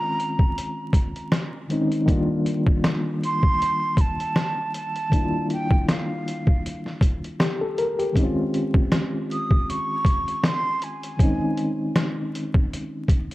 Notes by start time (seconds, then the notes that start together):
Already playing: D#3 G#3 C4 C#4 F4 A#5
0.20 closed hi-hat
0.39 kick
0.58 closed hi-hat
0.93 kick, closed hi-hat
1.16 closed hi-hat
1.32 snare, closed hi-hat
1.69 D#3 G#3 C4 C#4 D#4, closed hi-hat
1.92 closed hi-hat
2.06 D#3 G3 A#3, kick, closed hi-hat
2.10 D4 F4
2.46 closed hi-hat
2.66 kick
2.84 snare, closed hi-hat
3.24 C6, closed hi-hat
3.43 kick
3.62 closed hi-hat
3.97 A5, kick, closed hi-hat
4.20 closed hi-hat
4.36 snare, closed hi-hat
4.74 A5, closed hi-hat
4.96 closed hi-hat
5.10 D#3 G3 A#3, kick, closed hi-hat
5.14 D4 E4
5.22 F4
5.50 G5, closed hi-hat
5.71 kick
5.88 F5, snare, closed hi-hat
6.28 closed hi-hat
6.47 kick
6.66 closed hi-hat
6.86 snare
7.01 kick, closed hi-hat
7.24 closed hi-hat
7.40 G4, snare, closed hi-hat
7.61 A4
7.78 A#4, closed hi-hat
7.99 G4, closed hi-hat
8.13 D#3 G#3 C4, kick, closed hi-hat
8.17 C#4 D#4
8.25 F4
8.54 closed hi-hat
8.74 kick
8.92 snare, closed hi-hat
9.31 D#6, closed hi-hat
9.51 kick
9.70 C#6, closed hi-hat
10.05 kick, closed hi-hat
10.28 closed hi-hat
10.44 C6, snare, closed hi-hat
10.82 G#5, closed hi-hat
11.03 closed hi-hat
11.17 D#3 G#3 C4, kick, closed hi-hat
11.21 C#4 D#4
11.57 closed hi-hat
11.96 snare, closed hi-hat
12.35 closed hi-hat
12.54 kick
12.73 closed hi-hat
13.08 kick, closed hi-hat
13.31 closed hi-hat